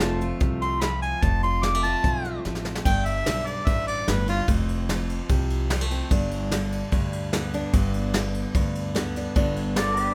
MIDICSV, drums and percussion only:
0, 0, Header, 1, 2, 480
1, 0, Start_track
1, 0, Tempo, 406780
1, 1447, Time_signature, 4, 2, 24, 8
1, 11965, End_track
2, 0, Start_track
2, 0, Title_t, "Drums"
2, 1, Note_on_c, 9, 38, 106
2, 1, Note_on_c, 9, 42, 88
2, 119, Note_off_c, 9, 38, 0
2, 119, Note_off_c, 9, 42, 0
2, 244, Note_on_c, 9, 42, 65
2, 362, Note_off_c, 9, 42, 0
2, 480, Note_on_c, 9, 42, 82
2, 483, Note_on_c, 9, 36, 110
2, 598, Note_off_c, 9, 42, 0
2, 601, Note_off_c, 9, 36, 0
2, 727, Note_on_c, 9, 42, 62
2, 845, Note_off_c, 9, 42, 0
2, 963, Note_on_c, 9, 38, 103
2, 963, Note_on_c, 9, 42, 78
2, 1081, Note_off_c, 9, 38, 0
2, 1081, Note_off_c, 9, 42, 0
2, 1209, Note_on_c, 9, 42, 56
2, 1327, Note_off_c, 9, 42, 0
2, 1443, Note_on_c, 9, 42, 80
2, 1446, Note_on_c, 9, 36, 113
2, 1561, Note_off_c, 9, 42, 0
2, 1564, Note_off_c, 9, 36, 0
2, 1682, Note_on_c, 9, 42, 58
2, 1800, Note_off_c, 9, 42, 0
2, 1924, Note_on_c, 9, 38, 109
2, 1924, Note_on_c, 9, 42, 83
2, 2042, Note_off_c, 9, 38, 0
2, 2042, Note_off_c, 9, 42, 0
2, 2165, Note_on_c, 9, 42, 62
2, 2283, Note_off_c, 9, 42, 0
2, 2407, Note_on_c, 9, 42, 79
2, 2408, Note_on_c, 9, 36, 105
2, 2525, Note_off_c, 9, 42, 0
2, 2526, Note_off_c, 9, 36, 0
2, 2648, Note_on_c, 9, 42, 64
2, 2766, Note_off_c, 9, 42, 0
2, 2890, Note_on_c, 9, 38, 57
2, 3008, Note_off_c, 9, 38, 0
2, 3009, Note_on_c, 9, 38, 63
2, 3125, Note_off_c, 9, 38, 0
2, 3125, Note_on_c, 9, 38, 87
2, 3243, Note_off_c, 9, 38, 0
2, 3248, Note_on_c, 9, 38, 88
2, 3366, Note_off_c, 9, 38, 0
2, 3367, Note_on_c, 9, 49, 111
2, 3368, Note_on_c, 9, 36, 118
2, 3485, Note_off_c, 9, 49, 0
2, 3486, Note_off_c, 9, 36, 0
2, 3606, Note_on_c, 9, 51, 68
2, 3724, Note_off_c, 9, 51, 0
2, 3850, Note_on_c, 9, 38, 117
2, 3850, Note_on_c, 9, 51, 90
2, 3968, Note_off_c, 9, 38, 0
2, 3968, Note_off_c, 9, 51, 0
2, 4089, Note_on_c, 9, 51, 64
2, 4207, Note_off_c, 9, 51, 0
2, 4328, Note_on_c, 9, 36, 109
2, 4328, Note_on_c, 9, 51, 82
2, 4446, Note_off_c, 9, 36, 0
2, 4446, Note_off_c, 9, 51, 0
2, 4573, Note_on_c, 9, 51, 65
2, 4691, Note_off_c, 9, 51, 0
2, 4811, Note_on_c, 9, 38, 108
2, 4811, Note_on_c, 9, 51, 80
2, 4929, Note_off_c, 9, 38, 0
2, 4929, Note_off_c, 9, 51, 0
2, 5054, Note_on_c, 9, 51, 63
2, 5172, Note_off_c, 9, 51, 0
2, 5289, Note_on_c, 9, 36, 114
2, 5289, Note_on_c, 9, 51, 82
2, 5407, Note_off_c, 9, 36, 0
2, 5407, Note_off_c, 9, 51, 0
2, 5530, Note_on_c, 9, 51, 62
2, 5648, Note_off_c, 9, 51, 0
2, 5773, Note_on_c, 9, 38, 120
2, 5773, Note_on_c, 9, 51, 88
2, 5891, Note_off_c, 9, 38, 0
2, 5891, Note_off_c, 9, 51, 0
2, 6012, Note_on_c, 9, 51, 63
2, 6130, Note_off_c, 9, 51, 0
2, 6249, Note_on_c, 9, 36, 113
2, 6249, Note_on_c, 9, 51, 86
2, 6367, Note_off_c, 9, 36, 0
2, 6367, Note_off_c, 9, 51, 0
2, 6488, Note_on_c, 9, 51, 70
2, 6606, Note_off_c, 9, 51, 0
2, 6728, Note_on_c, 9, 38, 111
2, 6728, Note_on_c, 9, 51, 90
2, 6846, Note_off_c, 9, 38, 0
2, 6846, Note_off_c, 9, 51, 0
2, 6969, Note_on_c, 9, 51, 69
2, 7087, Note_off_c, 9, 51, 0
2, 7207, Note_on_c, 9, 51, 91
2, 7210, Note_on_c, 9, 36, 112
2, 7325, Note_off_c, 9, 51, 0
2, 7328, Note_off_c, 9, 36, 0
2, 7447, Note_on_c, 9, 51, 67
2, 7565, Note_off_c, 9, 51, 0
2, 7688, Note_on_c, 9, 38, 115
2, 7688, Note_on_c, 9, 51, 94
2, 7806, Note_off_c, 9, 38, 0
2, 7806, Note_off_c, 9, 51, 0
2, 7931, Note_on_c, 9, 51, 68
2, 8049, Note_off_c, 9, 51, 0
2, 8170, Note_on_c, 9, 36, 113
2, 8171, Note_on_c, 9, 51, 88
2, 8288, Note_off_c, 9, 36, 0
2, 8289, Note_off_c, 9, 51, 0
2, 8409, Note_on_c, 9, 51, 65
2, 8527, Note_off_c, 9, 51, 0
2, 8647, Note_on_c, 9, 38, 113
2, 8647, Note_on_c, 9, 51, 87
2, 8765, Note_off_c, 9, 38, 0
2, 8765, Note_off_c, 9, 51, 0
2, 8890, Note_on_c, 9, 51, 64
2, 9008, Note_off_c, 9, 51, 0
2, 9128, Note_on_c, 9, 51, 83
2, 9129, Note_on_c, 9, 36, 119
2, 9246, Note_off_c, 9, 51, 0
2, 9247, Note_off_c, 9, 36, 0
2, 9364, Note_on_c, 9, 51, 63
2, 9482, Note_off_c, 9, 51, 0
2, 9604, Note_on_c, 9, 38, 121
2, 9604, Note_on_c, 9, 51, 80
2, 9722, Note_off_c, 9, 38, 0
2, 9722, Note_off_c, 9, 51, 0
2, 9844, Note_on_c, 9, 51, 64
2, 9962, Note_off_c, 9, 51, 0
2, 10086, Note_on_c, 9, 36, 116
2, 10086, Note_on_c, 9, 51, 80
2, 10204, Note_off_c, 9, 36, 0
2, 10204, Note_off_c, 9, 51, 0
2, 10326, Note_on_c, 9, 51, 67
2, 10444, Note_off_c, 9, 51, 0
2, 10568, Note_on_c, 9, 38, 117
2, 10568, Note_on_c, 9, 51, 83
2, 10686, Note_off_c, 9, 38, 0
2, 10686, Note_off_c, 9, 51, 0
2, 10808, Note_on_c, 9, 51, 65
2, 10926, Note_off_c, 9, 51, 0
2, 11044, Note_on_c, 9, 51, 88
2, 11045, Note_on_c, 9, 36, 118
2, 11162, Note_off_c, 9, 51, 0
2, 11163, Note_off_c, 9, 36, 0
2, 11283, Note_on_c, 9, 51, 67
2, 11401, Note_off_c, 9, 51, 0
2, 11519, Note_on_c, 9, 38, 120
2, 11519, Note_on_c, 9, 51, 98
2, 11637, Note_off_c, 9, 38, 0
2, 11637, Note_off_c, 9, 51, 0
2, 11760, Note_on_c, 9, 51, 69
2, 11878, Note_off_c, 9, 51, 0
2, 11965, End_track
0, 0, End_of_file